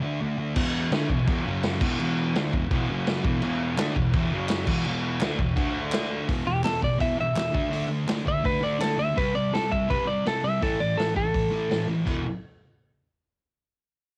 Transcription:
0.02 distorted electric guitar D3 A3 D4
0.21 distorted electric guitar D3 A3
0.38 distorted electric guitar D3 A3
0.55 distorted electric guitar E2 B2 E3, kick, crash
0.91 distorted electric guitar D3 A3 D4, snare, crash
1.10 distorted electric guitar E2 B2, kick
1.27 distorted electric guitar E2 B2 E3, kick, crash
1.46 distorted electric guitar F#2 C#3 F#3
1.63 snare, crash
1.81 distorted electric guitar E2 B2 E3, kick, crash
1.99 distorted electric guitar E2 B2 E3, crash
2.35 distorted electric guitar D3 A3 D4, snare, crash
2.53 distorted electric guitar E2 B2, kick
2.71 distorted electric guitar E2 B2 E3, kick, crash
2.88 distorted electric guitar F#2 C#3 F#3
3.07 snare, crash
3.24 distorted electric guitar E2 B2 E3, kick
3.42 distorted electric guitar E2 B2 E3, crash
3.77 distorted electric guitar D3 A3 D4, snare, clap, crash
3.96 distorted electric guitar E2 B2, kick
4.13 distorted electric guitar E2 B2 E3, kick, crash
4.32 distorted electric guitar F#2 C#3 F#3
4.49 snare, clap, crash
4.67 distorted electric guitar E2 B2 E3, kick, crash
4.85 distorted electric guitar E2 B2 E3, crash
5.20 distorted electric guitar D3 A3 D4, snare, clap, crash
5.39 distorted electric guitar E2 B2, kick
5.56 distorted electric guitar D3 A3 D4, kick, crash
5.92 snare, clap, crash
6.28 distorted electric guitar E2 B2 E3, kick, open hi-hat
6.47 distorted electric guitar E2 B2, electric slide guitar G4
6.64 distorted electric guitar E2 B2, electric slide guitar A4, snare, clap, open hi-hat
6.82 distorted electric guitar E2 B2, electric slide guitar D5, kick
6.99 distorted electric guitar E2 B2 E3, electric slide guitar E5, kick, open hi-hat
7.18 distorted electric guitar E2 B2, electric slide guitar E5
7.35 distorted electric guitar E2 B2, snare, clap, open hi-hat
7.53 distorted electric guitar D3 A3 D4, kick
7.71 distorted electric guitar D3 A3 D4, open hi-hat
7.88 distorted electric guitar D3 A3
8.07 distorted electric guitar D3 A3, snare, clap, open hi-hat
8.25 distorted electric guitar D3 A3, electric slide guitar E5, kick
8.43 distorted electric guitar D3 A3, electric slide guitar B4, kick, open hi-hat
8.61 distorted electric guitar D3 A3 D4, electric slide guitar D5
8.80 distorted electric guitar D3 A3, electric slide guitar A4, snare, clap, open hi-hat
8.98 distorted electric guitar D3 A3, electric slide guitar E5
9.16 distorted electric guitar C3 G3 C4, electric slide guitar B4, kick, open hi-hat
9.35 distorted electric guitar C3 G3, electric slide guitar D5
9.53 distorted electric guitar C3 G3, electric slide guitar A4, snare, open hi-hat
9.71 distorted electric guitar C3 G3, electric slide guitar E5, kick
9.88 distorted electric guitar C3 G3 C4, electric slide guitar B4, kick, open hi-hat
10.07 distorted electric guitar C3 G3, electric slide guitar D5
10.26 distorted electric guitar C3 G3, electric slide guitar A4, snare, open hi-hat
10.44 distorted electric guitar C3 G3, electric slide guitar E5
10.62 distorted electric guitar A2 E3 A3, electric slide guitar A4, kick, open hi-hat
10.80 distorted electric guitar A2 E3, electric slide guitar D5
10.97 distorted electric guitar A2 E3, electric slide guitar A4, snare, open hi-hat
11.15 distorted electric guitar A2 E3, electric slide guitar A4, kick
11.34 distorted electric guitar A2 E3, kick, open hi-hat
11.51 distorted electric guitar A2 E3 A3
11.70 distorted electric guitar A2 E3, snare, open hi-hat
11.88 distorted electric guitar A2 E3
12.06 distorted electric guitar E2 B2 E3, kick, crash

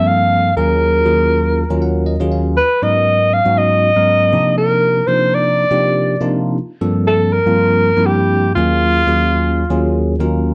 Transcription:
Already playing: tine electric piano G2 F3 A#3 C4 D4 A4
0.07 alto saxophone F5
0.56 tine electric piano D#2 F#3 A#3 C#4 F4 G#4, alto saxophone A#4
1.05 tine electric piano D#2 F#3 A#3 C#4 F4 G#4
1.70 tine electric piano D#2 F#3 A#3 C#4 F4 A#4
1.82 tine electric piano F#5
2.06 tine electric piano D#5
2.20 tine electric piano D#2 F#3 A#3 C#4 F4 G#4
2.32 tine electric piano F5
2.57 alto saxophone B4
2.82 tine electric piano G#2 F#3 B3 C#4 D#4 A#4, alto saxophone D#5
3.34 alto saxophone F5
3.45 tine electric piano G#2 F#3 B3 C#4 D#4 F#4
3.58 alto saxophone D#5
3.95 tine electric piano G#2 F#3 B3 C#4 D#4 A#4
4.32 tine electric piano C3 F3 A#3 D4 D#4 G4
4.58 alto saxophone A#4
5.07 tine electric piano C3 F3 A#3 D4 D#4 A#4, alto saxophone C5
5.35 alto saxophone D5
5.71 tine electric piano C3 F3 A#3 D4 D#4 G4
6.20 tine electric piano C3 F3 A#3 D4 D#4 F4
6.81 tine electric piano G2 F3 A#3 C4 D4 A4
7.07 alto saxophone A4
7.33 alto saxophone A#4
7.46 tine electric piano G2 F3 A#3 C4 D4 F4
7.97 tine electric piano G2 F3 A#3 C4 D4 E4
8.06 alto saxophone G4
8.55 tine electric piano D#2 F#3 A#3 C#4 F4 G#4, alto saxophone F4
9.07 tine electric piano D#2 F#3 A#3 C#4 F4 G#4
9.70 tine electric piano D#2 F#3 A#3 C#4 F4 G#4
10.19 tine electric piano D#2 F#3 A#3 C#4 F4 A#4

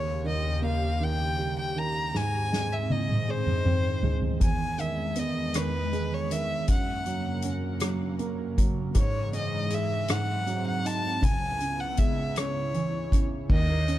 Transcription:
Already playing: upright piano D#2, analog synth pad D#2 C#3 G4, violin C#5
0.24 upright piano D#3, violin D#5
0.62 upright piano A#3, violin F5
1.00 upright piano D#3, violin G5
1.39 upright piano G3
1.59 violin G5
1.76 upright piano D#3, violin A#5
2.14 analog synth pad G#2 D#3 C4, upright piano G#2, violin G#5, snare
2.52 upright piano G#3, snare
2.72 violin E5
2.90 upright piano D#4, violin D#5, high tom
3.09 mid tom
3.28 upright piano G#3, violin C5
3.46 mid tom
3.65 upright piano C4, mid tom
4.03 upright piano G#3, floor tom
4.22 floor tom
4.40 upright piano E2, analog synth pad E2 G#3, violin G#5, kick, closed hi-hat
4.78 upright piano D#3, violin E5, closed hi-hat
5.15 upright piano B3, violin D#5, closed hi-hat
5.54 upright piano D#3, violin B4, cross-stick, closed hi-hat
5.93 upright piano G#3, closed hi-hat
6.14 violin C#5
6.31 upright piano D#3, violin E5, closed hi-hat
6.68 upright piano F#2, analog synth pad F#2 C#3 A#3, violin F#5, kick, closed hi-hat
7.06 upright piano F#3, closed hi-hat
7.42 upright piano C#4, closed hi-hat
7.80 upright piano F#3, cross-stick, closed hi-hat
8.19 upright piano A#3, closed hi-hat
8.57 upright piano F#3, kick, closed hi-hat
8.95 upright piano G#2, analog synth pad G#2 E3 G#3, violin C#5, kick, closed hi-hat
9.33 upright piano G#3, violin D#5, closed hi-hat
9.70 upright piano G#4, violin E5, closed hi-hat
10.08 upright piano G#2, analog synth pad F#3 C4, violin F#5, cross-stick, closed hi-hat
10.47 upright piano F#3, closed hi-hat
10.67 violin F#5
10.85 upright piano D#4, violin A5, closed hi-hat
11.22 upright piano C#2, analog synth pad C#3 B3 E4, violin G#5, kick, closed hi-hat
11.60 upright piano C#3, closed hi-hat
11.80 violin F#5
11.97 upright piano G#3, violin E5, kick, closed hi-hat
12.36 upright piano C#3, violin C#5, cross-stick, closed hi-hat
12.74 upright piano E3, closed hi-hat
13.12 upright piano C#3, kick, closed hi-hat
13.49 fingered electric bass D#2, upright piano D#3, analog synth pad C#5 F#5 D#6, violin D#5, kick, crash
13.69 upright piano A#3
13.88 upright piano C#4, closed hi-hat

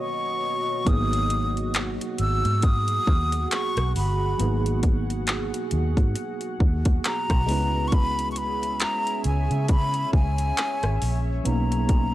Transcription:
Already playing: ambient pad B2 F#4 C#5 D#5, tine electric piano D#3 A#3 B3 C#4 F#4
0.00 flute C#6
0.85 fingered electric bass G#1, tine electric piano F#3 A#3 B3 D#4, ambient pad G#4 F#5, flute D#6, kick, closed hi-hat
0.90 tine electric piano G#4
1.13 closed hi-hat
1.30 closed hi-hat
1.57 closed hi-hat
1.74 clap, closed hi-hat
2.01 closed hi-hat
2.18 fingered electric bass G#1, flute E6, closed hi-hat
2.45 fingered electric bass G#2, closed hi-hat
2.62 flute D#6, kick, closed hi-hat
2.88 closed hi-hat
3.07 fingered electric bass D#2, kick
3.32 closed hi-hat
3.51 flute C#6, clap, closed hi-hat
3.77 fingered electric bass B1, cross-stick, closed hi-hat
3.96 fingered electric bass G1, flute B5, open hi-hat
4.38 fingered electric bass G#1, tine electric piano F#3 A#3 B3 D#4, closed hi-hat
4.43 tine electric piano G#4
4.66 closed hi-hat
4.83 kick, closed hi-hat
5.10 closed hi-hat
5.27 clap, closed hi-hat
5.54 closed hi-hat
5.71 fingered electric bass D#2, closed hi-hat
5.97 fingered electric bass G#2, kick, closed hi-hat
6.16 closed hi-hat
6.41 closed hi-hat
6.60 fingered electric bass D#2, kick
6.85 kick, closed hi-hat
7.04 flute A#5, clap, closed hi-hat
7.30 fingered electric bass B1, kick, cross-stick, closed hi-hat
7.46 fingered electric bass C#2, tine electric piano G#3 B3 C#4 E4, ambient pad C#4 G#4 C#5 E5, open hi-hat
7.51 tine electric piano B4
7.88 flute C#6
7.92 flute B5, kick, closed hi-hat
8.19 closed hi-hat
8.32 flute C#6
8.36 flute B5, closed hi-hat
8.63 closed hi-hat
8.80 flute A#5, clap, closed hi-hat
9.07 closed hi-hat
9.24 fingered electric bass C#2, flute G#5, closed hi-hat
9.51 fingered electric bass C#3, closed hi-hat
9.68 flute B5, kick, closed hi-hat
9.94 closed hi-hat
10.13 fingered electric bass C#2, flute G#5, kick
10.38 closed hi-hat
10.57 clap, closed hi-hat
10.83 fingered electric bass G#1, cross-stick, closed hi-hat
11.02 fingered electric bass A#1, open hi-hat
11.43 fingered electric bass B1, tine electric piano F#3 B3 C#4 D#4, ambient pad F#4 D#5, flute A#5, closed hi-hat
11.48 tine electric piano A#3
11.72 closed hi-hat
11.89 kick, closed hi-hat

